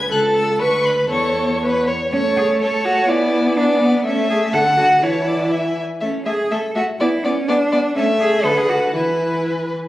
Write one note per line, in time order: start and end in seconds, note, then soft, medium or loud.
0.00 0.10 B4 medium
0.00 0.11 G#6 loud
0.10 0.62 C#2 medium
0.10 0.61 A4 medium
0.10 0.20 F#6 loud
0.36 0.60 E6 medium
0.59 1.10 D2 medium
0.59 1.10 B4 medium
0.59 1.09 B4 medium
0.59 0.86 C#6 loud
0.85 1.10 B5 medium
1.10 1.91 E2 medium
1.10 1.61 A4 medium
1.10 1.86 C#5 medium
1.10 1.61 C#6 medium
1.63 1.89 B4 medium
1.87 2.13 C#5 medium
2.12 3.05 A3 medium
2.12 2.21 C#4 medium
2.12 2.59 C#5 medium
2.12 2.58 A5 medium
2.37 2.45 G#4 medium
2.62 2.87 A4 medium
2.62 3.11 C#5 medium
2.62 3.11 A5 medium
2.85 3.11 F#4 medium
3.09 4.03 B3 medium
3.09 3.58 E4 medium
3.09 3.56 D5 medium
3.09 3.58 G#5 medium
3.57 3.81 D4 medium
3.57 4.04 D5 medium
3.57 4.05 G#5 medium
3.81 4.05 B3 medium
4.05 4.55 A3 medium
4.05 4.30 C#4 medium
4.05 4.55 E5 medium
4.05 4.52 A5 medium
4.30 4.38 G#4 medium
4.53 5.04 D3 medium
4.53 4.61 A4 medium
4.53 5.05 F#5 medium
4.53 5.02 A5 medium
4.78 5.04 F#4 medium
5.02 5.81 E3 medium
5.02 5.77 E4 medium
5.02 5.29 C#5 medium
5.02 5.51 A5 medium
5.27 5.53 D5 medium
5.51 5.81 E5 medium
5.51 5.81 G#5 medium
6.01 6.09 A3 medium
6.01 6.25 C#4 medium
6.01 6.09 E5 medium
6.01 6.11 A5 soft
6.26 6.34 A3 soft
6.26 6.53 G#4 medium
6.26 6.34 E5 soft
6.26 6.36 A5 soft
6.51 6.59 A3 medium
6.51 6.75 A4 medium
6.51 6.59 E5 soft
6.51 6.61 A5 medium
6.75 6.83 A3 medium
6.75 6.84 F#4 medium
6.75 6.83 E5 soft
6.75 6.85 A5 soft
7.00 7.08 B3 medium
7.00 7.26 E4 medium
7.00 7.08 D5 medium
7.00 7.10 G#5 medium
7.24 7.33 B3 medium
7.24 7.50 C#4 medium
7.24 7.33 D5 medium
7.24 7.35 G#5 medium
7.48 7.57 B3 medium
7.48 7.96 D4 medium
7.48 7.57 D5 medium
7.48 7.59 G#5 medium
7.72 7.80 B3 medium
7.72 7.80 D5 medium
7.72 7.83 G#5 medium
7.96 8.47 A3 medium
7.96 8.04 C#4 medium
7.96 8.46 E5 medium
7.96 8.06 A5 medium
8.20 8.45 G#4 medium
8.20 8.29 G#5 medium
8.44 8.96 D3 medium
8.44 8.59 A4 medium
8.44 8.94 B4 medium
8.44 8.98 F#5 medium
8.57 8.71 G#4 medium
8.70 8.94 F#4 medium
8.94 9.76 E3 medium
8.94 9.45 E4 medium
8.94 9.74 B4 soft
8.94 9.77 G#5 medium